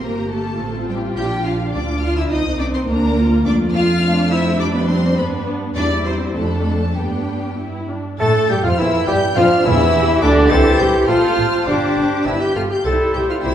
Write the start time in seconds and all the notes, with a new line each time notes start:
0.01 G1 A#3 G4 A#4 A#5
0.30 A3 A4 A5
0.59 A1 C4 F4
0.88 G3 G4 G5
1.16 A#1 D4 G4 G5 G6
1.45 F4 F5 F6
1.74 D2 D4 F4 D5 D6
2.02 F4 F5 F6
2.16 E4 E5 E6
2.31 C2 C4 D#4 D#5 D#6
2.58 D4 D5 D6
2.74 C4 C5 C6
2.88 D2 A#3 D4 A#4 A#5
3.17 F4
3.45 F2 A3 D4 F4 D5 D6
3.73 F4 F5 F6
4.03 A3 D4
4.31 C4 E4 E5 E6
4.59 F2 G3 D4 D5 D6
4.75 B3 B4 B5
4.89 C4 C5 C6
5.17 G2 B3 D4 B4 B5
5.76 E2 G3 D4 E4 D5 D6
6.05 C4 C5 C6
6.35 F2 A3 D4 A4 A5
6.44 B5
6.52 A5
6.61 B5
6.69 A5
6.95 G2 G3 B3 D4 G4 G5
7.58 E4
7.89 D4
8.19 A2 A3 A4 A5 A6
8.48 G2 G3 G4 G5 G6
8.62 F2 F3 F4 F5 F6
8.78 E2 E3 E4 E5 E6
9.06 G2 G3 G4 G5 G6
9.35 F2 F3 D4 F4 F5 F6
9.64 E2 E3 E4 E5 E6
9.94 G4
10.22 D2 D3 D4 D5 D6
10.49 C2 E3 C4 E4 A4 C5 G5 A6
10.79 C2 E4 G4 C5 G6
11.07 A1 F3 F4 A4 C5 A5 F6
11.37 A1 F4 C5
11.66 G1 G3 D4 G4 C5 G5 D6
11.97 G1 G4 C5
12.25 G1 G3 B3 E4 G4 B4 G5 E6
12.41 G4 G6
12.55 G1 F4 A4 F6
12.70 G4 G6
12.85 C2 G3 C4 E4 G4 A4 C5 G5 A6
13.15 C2 G4 C5 G6
13.29 F4 F6
13.44 C2 C4 E4 G4 C5 E6